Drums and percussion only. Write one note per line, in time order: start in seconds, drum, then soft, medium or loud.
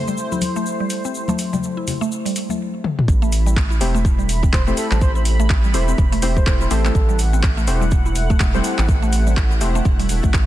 0.08 cabasa soft
0.18 cabasa soft
0.32 high conga medium
0.32 cabasa soft
0.41 open hi-hat medium
0.41 high conga medium
0.41 cabasa medium
0.56 cabasa soft
0.66 cabasa soft
0.90 open hi-hat medium
0.90 cabasa medium
1.05 cabasa soft
1.15 cabasa soft
1.28 high conga loud
1.28 cabasa soft
1.39 open hi-hat medium
1.39 cabasa medium
1.53 high conga medium
1.53 low conga medium
1.53 cabasa soft
1.63 cabasa soft
1.87 open hi-hat medium
1.87 low conga medium
1.87 cabasa medium
2.02 cabasa soft
2.12 cabasa soft
2.26 open hi-hat soft
2.26 cabasa soft
2.36 open hi-hat medium
2.36 cabasa medium
2.49 high conga medium
2.49 cabasa soft
2.84 high tom medium
2.99 mid tom medium
3.08 kick loud
3.08 cabasa soft
3.23 cabasa soft
3.32 open hi-hat medium
3.32 cabasa loud
3.47 cabasa soft
3.56 kick loud
3.56 clap loud
3.56 cabasa medium
3.72 cabasa soft
3.81 open hi-hat medium
3.81 cabasa medium
3.96 cabasa soft
4.05 kick loud
4.05 cabasa medium
4.19 cabasa soft
4.29 open hi-hat medium
4.29 cabasa medium
4.43 kick medium
4.43 cabasa soft
4.53 kick loud
4.53 clap loud
4.53 cabasa medium
4.68 cabasa soft
4.77 open hi-hat medium
4.77 cabasa medium
4.91 clap medium
4.91 cabasa soft
5.01 kick loud
5.01 cabasa medium
5.16 cabasa soft
5.25 open hi-hat medium
5.25 cabasa loud
5.40 cabasa soft
5.50 kick loud
5.50 clap loud
5.50 cabasa medium
5.64 cabasa soft
5.74 open hi-hat medium
5.74 cabasa medium
5.88 cabasa soft
5.98 kick loud
5.98 cabasa medium
6.13 open hi-hat medium
6.13 cabasa soft
6.22 open hi-hat medium
6.22 cabasa medium
6.37 kick medium
6.37 cabasa soft
6.47 kick loud
6.47 clap loud
6.47 cabasa medium
6.61 cabasa soft
6.71 open hi-hat medium
6.71 cabasa medium
6.85 clap medium
6.85 cabasa soft
6.95 kick loud
6.95 cabasa medium
7.09 cabasa soft
7.19 open hi-hat medium
7.19 cabasa loud
7.33 cabasa soft
7.43 kick loud
7.43 clap loud
7.43 cabasa medium
7.58 cabasa soft
7.67 open hi-hat medium
7.67 cabasa loud
7.82 cabasa soft
7.91 kick loud
7.91 cabasa medium
8.06 cabasa soft
8.15 open hi-hat medium
8.15 cabasa loud
8.30 kick medium
8.30 cabasa soft
8.40 kick loud
8.40 clap loud
8.40 cabasa medium
8.54 cabasa soft
8.64 open hi-hat medium
8.64 cabasa loud
8.78 clap medium
8.78 cabasa soft
8.89 kick loud
8.89 cabasa medium
9.03 cabasa soft
9.13 open hi-hat medium
9.13 cabasa loud
9.27 cabasa soft
9.37 kick loud
9.37 clap loud
9.37 cabasa medium
9.51 cabasa soft
9.61 open hi-hat medium
9.61 cabasa loud
9.75 cabasa soft
9.85 kick loud
9.85 cabasa medium
10.00 open hi-hat soft
10.00 cabasa soft
10.09 open hi-hat medium
10.09 cabasa medium
10.24 kick medium
10.24 cabasa soft
10.34 kick loud
10.34 clap loud
10.34 cabasa medium